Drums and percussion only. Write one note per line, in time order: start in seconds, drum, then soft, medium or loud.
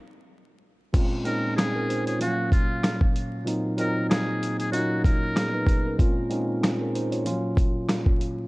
0.94 kick loud
0.94 closed hi-hat medium
0.94 crash medium
1.25 closed hi-hat medium
1.58 cross-stick medium
1.58 snare loud
1.58 closed hi-hat loud
1.90 closed hi-hat medium
2.07 closed hi-hat medium
2.21 closed hi-hat loud
2.52 kick loud
2.52 closed hi-hat medium
2.83 cross-stick medium
2.83 snare loud
2.83 closed hi-hat loud
3.01 kick medium
3.16 closed hi-hat medium
3.47 closed hi-hat medium
3.78 closed hi-hat medium
4.11 cross-stick loud
4.11 snare loud
4.11 closed hi-hat medium
4.43 closed hi-hat medium
4.60 closed hi-hat medium
4.73 closed hi-hat loud
5.04 kick loud
5.04 snare soft
5.04 closed hi-hat medium
5.36 cross-stick medium
5.36 snare loud
5.36 closed hi-hat loud
5.67 kick loud
5.67 closed hi-hat medium
5.99 kick loud
5.99 closed hi-hat medium
6.31 closed hi-hat medium
6.63 cross-stick medium
6.63 snare loud
6.63 closed hi-hat loud
6.95 closed hi-hat medium
7.12 closed hi-hat medium
7.26 closed hi-hat medium
7.57 kick loud
7.57 closed hi-hat medium
7.89 cross-stick medium
7.89 snare loud
7.89 closed hi-hat loud
8.06 kick medium
8.21 closed hi-hat medium